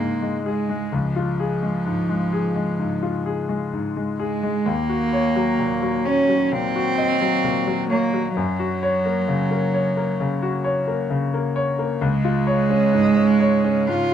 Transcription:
Already playing: grand piano G#3 F4 G#4, cello A#3
0.00 grand piano G#2
0.22 grand piano G#3
0.46 cello G#3, grand piano G#4
0.69 grand piano G#3
0.92 grand piano C#2, cello F3
1.16 grand piano F4
1.40 grand piano G#4
1.63 grand piano G#3
1.86 grand piano G#2
2.09 grand piano G#3
2.33 grand piano G#4
2.56 grand piano G#3
2.79 grand piano G#2
3.02 grand piano F4
3.26 grand piano G#4
3.49 grand piano G#3
3.73 grand piano G#2
3.97 grand piano G#3
4.20 cello G#3, grand piano G#4
4.43 grand piano G#3
4.66 grand piano D#2, cello A#3
4.90 grand piano F#4
5.13 grand piano C#5
5.36 grand piano F#3
5.59 grand piano A#2
5.82 grand piano F#3
6.05 cello C#4, grand piano C#5
6.29 grand piano F#3
6.52 grand piano A#2, cello C4
6.76 grand piano F#4
6.98 grand piano D#5
7.22 grand piano F#3
7.44 grand piano A#2
7.67 grand piano F#3
7.90 cello A#3, grand piano C#5
8.14 grand piano F#3
8.36 grand piano F#2, cello F#3
8.60 grand piano F#4
8.83 grand piano C#5
9.05 grand piano A#3
9.28 grand piano C#3
9.51 grand piano A#3
9.74 grand piano C#5
9.97 grand piano A#3
10.20 grand piano C#3
10.43 grand piano F#4
10.64 grand piano C#5
10.88 grand piano A#3
11.10 grand piano C#3
11.34 grand piano A#3
11.56 grand piano C#5
11.79 grand piano A#3
12.01 grand piano C#2, cello G#3
12.25 grand piano F4
12.47 grand piano C#5
12.70 grand piano C#4
12.93 grand piano G#2
13.16 grand piano C#4
13.40 grand piano C#5
13.64 grand piano C#4
13.88 grand piano G#2, cello F4

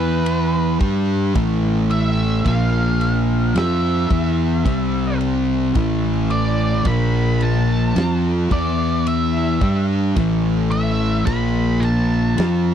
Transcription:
Already playing: fingered electric bass E2, distorted electric guitar E3 B3 E4, lead electric guitar B4
0.26 ride
0.79 fingered electric bass G2, distorted electric guitar G3 D4 G4, kick, ride
1.35 fingered electric bass A1, distorted electric guitar A2 E3 A3, kick, ride
1.90 lead electric guitar E5, ride
2.45 fingered electric bass A#1, distorted electric guitar A#2 F3 A#3, lead electric guitar F5, kick, ride
3.01 ride
3.55 fingered electric bass F2, distorted electric guitar F3 C4 F4, lead electric guitar E5, snare, ride
4.10 fingered electric bass E2, distorted electric guitar E3 B3 E4, kick, ride
4.65 fingered electric bass C2, distorted electric guitar C3 G3 C4, kick, ride
5.21 ride
5.75 fingered electric bass A1, distorted electric guitar A2 E3 A3, kick, ride
6.30 lead electric guitar D5, ride
6.85 fingered electric bass A#1, distorted electric guitar A#2 F3 A#3, lead electric guitar B5, kick, ride
7.41 lead electric guitar A5, ride
7.96 fingered electric bass F2, distorted electric guitar F3 C4 F4, snare, ride
8.51 fingered electric bass E2, distorted electric guitar E3 B3 E4, lead electric guitar D5, kick, ride
9.07 lead electric guitar E5, ride
9.61 fingered electric bass G2, distorted electric guitar G3 D4 G4, kick, ride
10.16 fingered electric bass A1, distorted electric guitar A2 E3 A3, kick, ride
10.71 lead electric guitar E5, ride
11.26 fingered electric bass A#1, distorted electric guitar A#2 F3 A#3, lead electric guitar B5, kick, ride
11.81 lead electric guitar A5, ride
12.38 fingered electric bass F2, distorted electric guitar F3 C4 F4, snare, ride

